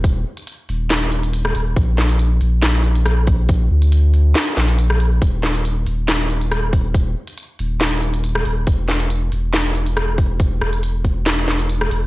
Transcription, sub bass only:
X:1
M:4/4
L:1/8
Q:1/4=139
K:Bbphr
V:1 name="Sub bass" clef=bass
E,,, z2 E,,,4 E,,, | B,,,3 B,,,4- B,,,- | B,,, =D,,3 z B,,,3 | E,,,3 E,,,4- E,,,- |
E,,, z2 E,,,4 E,,, | _F,,,3 F,,,4- F,,,- | _F,,, F,,,6 F,,, |]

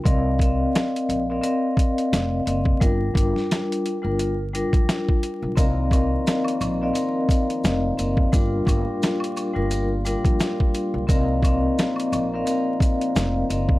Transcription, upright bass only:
X:1
M:4/4
L:1/16
Q:"Swing 16ths" 1/4=87
K:Cm
V:1 name="Upright bass" clef=bass
C,,4 z2 B,,,2 z4 F,,,2 ^F,,,2 | G,,,2 G,,, z4 G,,,4 B,,, z3 =B,,, | C,,4 z2 B,,,2 z4 F,,,2 ^F,,,2 | G,,,2 G,,, z4 G,,,4 B,,, z3 =B,,, |
C,,4 z2 B,,,2 z4 F,,,2 ^F,,,2 |]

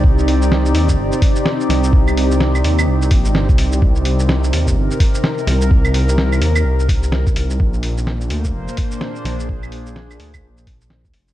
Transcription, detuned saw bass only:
X:1
M:4/4
L:1/16
Q:"Swing 16ths" 1/4=127
K:Eb
V:1 name="Detuned saw bass" clef=bass
C,,6 E,,2 G,,, z4 z C,,2- | C,,6 E,,2 C,,2 B,,, G,,,2 C,,3 | C,,6 E,,2 G,,, z4 z C,,2- | C,,6 E,,2 C,,4- C,, G,,, C,,2 |
B,,,6 D,,2 F,,, z4 z B,,,2- | B,,,6 D,,2 B,,,4 B,,, D,, F,,,2 |]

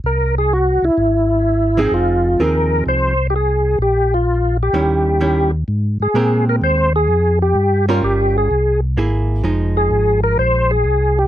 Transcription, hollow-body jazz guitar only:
X:1
M:4/4
L:1/8
Q:"Swing" 1/4=128
K:Fm
V:1 name="Hollow-body jazz guitar"
z6 z [F,CE^G]- | [F,CE^G]2 [F,CEA]3 z3 | z4 [E,G,D_F]2 [E,G,DF] z | [K:Ab] z2 [A,CGB]3 z3 |
z [G,DFB]3 z2 [B,=EA]2 | [F,A,E]4- [F,A,E] z3 |]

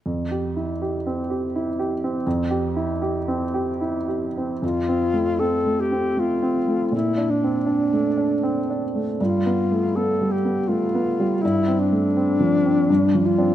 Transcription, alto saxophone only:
X:1
M:3/4
L:1/8
Q:1/4=80
K:F
V:1 name="Alto saxophone"
z6 | z6 | F2 A G F2 | E D4 z |
F2 A G F2 | E D4 F |]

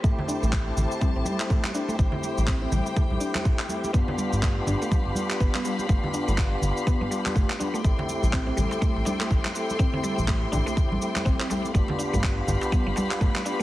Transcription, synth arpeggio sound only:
X:1
M:4/4
L:1/16
Q:"Swing 16ths" 1/4=123
K:Am
V:1 name="Synth arpeggio sound"
A, z D A, z4 C C G, z A, z D A, | z4 C C G, z A, z D A, z4 | B, B, G, z A, z D A, z4 B, B, G, z | A, z D A, z4 B, B, G, z A, z D A, |
z4 C C G, z A, z D A, z4 | C C G, z A, z D A, z4 C C G, z | A, z D A, z4 B, B, G, z A, z D A, |]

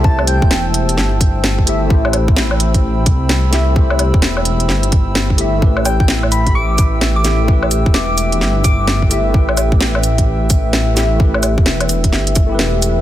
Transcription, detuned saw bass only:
X:1
M:4/4
L:1/16
Q:"Swing 16ths" 1/4=129
K:Am
V:1 name="Detuned saw bass" clef=bass
C,,3 E,,,4- E,,, G,,,8 | A,,,8- A,,,2 C,,6- | C,,3 E,,,4- E,,, G,,,8 | A,,,8- A,,,2 A,,,6- |
A,,,3 E,,,4- E,,, G,,,8 | A,,,8- A,,,2 A,,,6- | A,,,3 E,,,4- E,,, G,,,4 E,,,4 |]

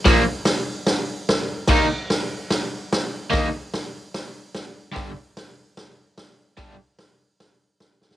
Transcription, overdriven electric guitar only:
X:1
M:4/4
L:1/8
Q:1/4=147
K:Gm
V:1 name="Overdriven electric guitar" clef=bass
[B,,F,B,] z6 z | [E,B,E] z6 z | [E,B,E] z6 z | [G,,D,G,] z6 z |
[G,,D,G,] z6 z |]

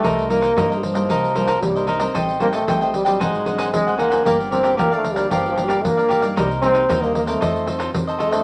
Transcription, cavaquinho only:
X:1
M:4/4
L:1/16
Q:1/4=114
K:Cdor
V:1 name="Cavaquinho"
[EBce]2 [EBce] [EBce] [EBce] [Bce]2 [Bce] [EBce]2 [EBce] [EBce] z [Bce] [EBce] [Bce] | [Aceg]2 [Aceg] [Aceg] [Aceg] [ceg]2 [ceg] [E_Ac_g]2 [EAcg] [EAcg] z [Acg] [EAcg] [Acg] | [GBdf]2 [GBdf] [GBdf] [GBdf] [Bdf]2 [Bdf] [GBdf]2 [GBdf] [GBdf] z [Bdf] [GBdf] [Bdf] | [EBce]2 [EBce] [EBce] [EBce] [Bce]2 [Bce] [FAce]2 [FAce] [FAce] z [Ace] [FAce] [Ace] |]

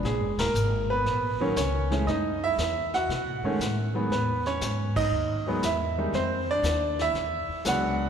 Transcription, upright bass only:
X:1
M:4/4
L:1/8
Q:"Swing" 1/4=118
K:Elyd
V:1 name="Upright bass" clef=bass
(3A,,, F,,, D,,, G,,,2 A,,,2 C,,2 | F,,2 E,,2 (3B,, =A,, F,, A,,2 | E,,2 G,,2 D,,2 E,,2 | =F,,2 D,,2 E,, z C,,2 |]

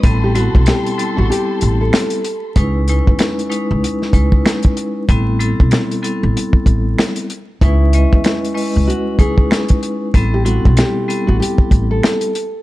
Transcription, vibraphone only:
X:1
M:4/4
L:1/8
Q:"Swing 16ths" 1/4=95
K:C#m
V:1 name="Vibraphone"
[=G,B,=CEA] [G,B,CEA]2 [G,B,CEA]4 z | [G,CDEB] [G,CDEB]2 [G,CDEB]2 [G,CDEB]3 | [=G,B,=CEA] [G,B,CEA]2 [G,B,CEA]4 z | [G,CDEB] [G,CEBd]2 [G,CEBd]2 [G,CDEB]3 |
[=G,B,=CEA] [G,B,CEA]2 [G,B,CEA]4 z |]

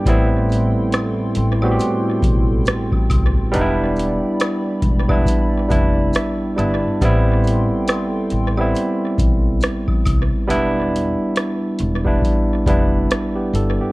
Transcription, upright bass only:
X:1
M:4/4
L:1/16
Q:"Swing 16ths" 1/4=69
K:Am
V:1 name="Upright bass" clef=bass
A,,,3 z3 A,,,2 z2 B,,,2 z2 C,, z | E,,,3 z3 E,,,2 z2 F,,,2 z2 G,,, z | A,,,3 z3 A,,,2 z2 B,,,2 z2 C,, z | E,,,3 z3 E,,,2 z2 F,,,2 z2 G,,, z |]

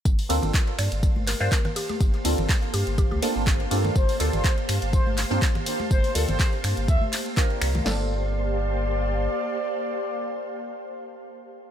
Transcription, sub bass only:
X:1
M:4/4
L:1/16
Q:"Swing 16ths" 1/4=123
K:Gm
V:1 name="Sub bass" clef=bass
G,,, z D,, G,,, z2 G,, G,,,2 G,,,2 G,, z4 | G,,, z D,, G,,, z2 G,, G,,,2 D,, z G,,,3 G,,2 | G,,, z D,, G,,, z2 G,, G,,,2 G,,,2 G,, z4 | G,,, z D,, G,,, z2 G,, G,,, D,, z4 z C,,2 |
G,,,12 z4 | z16 |]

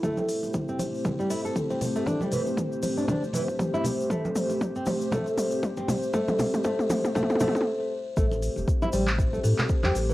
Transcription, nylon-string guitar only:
X:1
M:4/4
L:1/16
Q:"Swing 16ths" 1/4=118
K:Am
V:1 name="Nylon-string guitar"
A, z4 C z3 G, E A z C z A, | D G, E, z4 D D z E, z2 E z2 | A, z4 C z2 A, z4 C z2 | A, z3 A, z3 A, z A, z4 z |
A, z4 E G, z2 A, z3 G z E, |]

